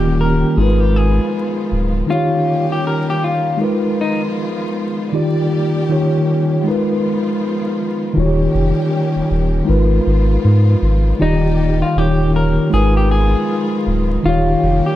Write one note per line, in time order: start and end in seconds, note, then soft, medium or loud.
0.00 0.44 D#1 loud
0.00 0.56 D#3 medium
0.00 0.57 D#3 medium
0.00 0.56 G3 medium
0.00 0.56 A#3 medium
0.00 0.58 A#3 medium
0.00 0.56 C#4 medium
0.00 0.58 C#4 medium
0.00 0.58 F4 medium
0.00 0.17 G4 medium
0.00 0.55 G4 medium
0.00 0.59 G4 medium
0.21 0.57 A#4 medium
0.57 1.20 G#1 loud
0.57 6.61 D#3 medium
0.57 2.08 F3 medium
0.57 2.06 G#3 medium
0.57 2.08 G#3 medium
0.57 2.08 B3 medium
0.57 2.07 D#4 medium
0.57 2.08 F4 medium
0.57 0.80 G#4 medium
0.61 2.08 A#4 medium
0.61 2.09 B4 medium
0.80 0.96 G4 medium
0.96 2.06 G#4 medium
1.72 2.03 D1 medium
2.06 3.57 D#3 medium
2.06 3.59 G3 medium
2.06 3.59 A#3 medium
2.06 3.59 C#4 medium
2.06 3.57 D#4 medium
2.06 3.58 F4 medium
2.06 3.59 G4 medium
2.10 2.67 F4 loud
2.10 3.59 G4 medium
2.10 3.59 C#5 medium
2.72 2.85 G4 medium
2.87 3.06 A#4 medium
3.10 3.23 G4 medium
3.24 3.58 F4 medium
3.57 5.08 G#3 medium
3.57 5.09 D#4 medium
3.57 5.09 F4 medium
3.57 5.10 A#4 medium
3.61 5.12 F3 medium
3.61 5.12 G#3 medium
3.61 5.12 B3 medium
3.61 5.12 F4 medium
3.61 5.11 B4 medium
4.01 4.21 D#4 medium
5.12 5.88 D#3 medium
5.12 6.63 G3 medium
5.12 5.88 A#3 medium
5.12 5.89 D#4 medium
5.12 5.89 F4 medium
5.12 6.63 G4 medium
5.12 5.90 G4 medium
5.12 5.88 D5 medium
5.12 5.90 D5 medium
5.89 6.65 D#3 medium
5.89 6.64 A#3 medium
5.89 6.64 C#4 medium
5.89 6.63 D#4 medium
5.89 6.65 F4 medium
5.89 6.66 G4 medium
5.89 6.67 C#5 medium
6.63 11.92 D#3 medium
6.63 8.15 F3 medium
6.63 8.13 G#3 medium
6.63 8.15 G#3 medium
6.63 8.15 B3 medium
6.63 8.14 D#4 medium
6.63 8.15 F4 medium
6.63 8.14 F4 medium
6.68 8.15 A#4 medium
6.68 8.16 B4 medium
8.14 8.48 D#1 loud
8.14 9.64 D#3 medium
8.14 9.66 G3 medium
8.14 9.66 A#3 medium
8.14 9.66 C#4 medium
8.14 9.65 D#4 medium
8.14 9.65 F4 medium
8.14 9.66 G4 medium
8.18 8.25 F#4 soft
8.18 9.67 C#5 medium
8.25 9.70 G4 medium
8.54 8.73 F1 medium
9.16 9.22 D#1 soft
9.31 9.62 D#1 medium
9.64 11.19 F3 medium
9.64 11.15 G#3 medium
9.64 11.19 G#3 medium
9.64 11.19 B3 medium
9.64 11.16 D#4 medium
9.64 11.18 F4 medium
9.64 11.17 F4 medium
9.69 10.00 G#1 loud
9.69 11.18 A#4 medium
9.69 11.18 B4 medium
10.07 10.38 G#1 medium
10.44 10.76 G#2 medium
10.82 11.14 G#1 medium
11.19 11.83 D#1 loud
11.19 11.96 D#3 medium
11.19 12.70 G3 medium
11.19 11.94 A#3 medium
11.19 11.96 D#4 medium
11.19 11.78 D#4 loud
11.19 11.96 F4 medium
11.19 11.94 G4 medium
11.19 11.97 G4 medium
11.19 11.95 D5 medium
11.19 11.97 D5 medium
11.82 11.98 F4 medium
11.95 12.59 D#1 loud
11.95 12.70 D#3 medium
11.95 12.73 D#3 medium
11.95 12.71 A#3 medium
11.95 12.71 C#4 medium
11.95 12.70 D#4 medium
11.95 12.72 F4 medium
11.95 12.71 G4 medium
11.95 12.31 G4 medium
11.99 12.74 G4 medium
11.99 12.74 C#5 medium
12.36 12.70 A#4 medium
12.70 13.35 G#1 loud
12.70 14.96 D#3 medium
12.70 14.22 F3 medium
12.70 14.20 G#3 medium
12.70 14.22 G#3 medium
12.70 14.22 B3 medium
12.70 14.21 D#4 medium
12.70 14.22 F4 medium
12.70 14.21 F4 medium
12.70 12.94 G#4 medium
12.74 14.22 A#4 medium
12.74 14.23 B4 medium
12.97 13.10 G4 medium
13.11 14.21 G#4 medium
13.87 14.18 D1 medium
14.23 14.56 D#1 loud
14.23 14.96 D#3 medium
14.23 14.96 G3 medium
14.23 14.96 A#3 medium
14.23 14.96 C#4 medium
14.23 14.96 D#4 medium
14.23 14.82 F4 loud
14.23 14.96 F4 medium
14.23 14.96 G4 medium
14.27 14.96 G4 medium
14.27 14.96 C#5 medium
14.63 14.81 F1 medium
14.86 14.96 G4 medium